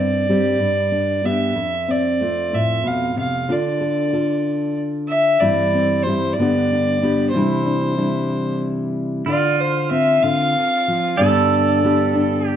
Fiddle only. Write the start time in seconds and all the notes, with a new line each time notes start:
Already playing: D5
1.25 E5
1.91 D5
2.54 E5
2.87 F5
3.19 F5
3.52 D5
5.09 E5
5.40 D5
6.03 C5
6.33 D5
7.31 C5
9.29 D5
9.60 C5
9.91 E5
10.23 F5
11.17 D5